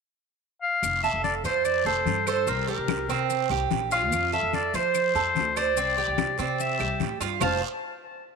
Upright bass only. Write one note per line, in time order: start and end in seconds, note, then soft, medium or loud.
0.82 1.12 F1 medium
1.13 1.43 F1 medium
1.44 1.83 F2 medium
1.85 2.05 F1 medium
2.05 2.48 G2 medium
2.47 2.77 C2 loud
2.78 3.07 C2 medium
3.08 3.48 C3 medium
3.50 3.70 C2 medium
3.70 4.12 A#1 medium
4.12 4.41 F2 medium
4.43 4.72 F2 medium
4.74 5.13 F3 medium
5.15 5.35 F2 medium
5.35 5.76 D2 loud
5.76 6.06 C2 medium
6.08 6.37 C2 medium
6.39 6.78 C3 loud
6.79 6.99 C2 medium
7.00 7.19 A2 medium
7.20 7.39 G2 medium
7.41 7.60 F1 loud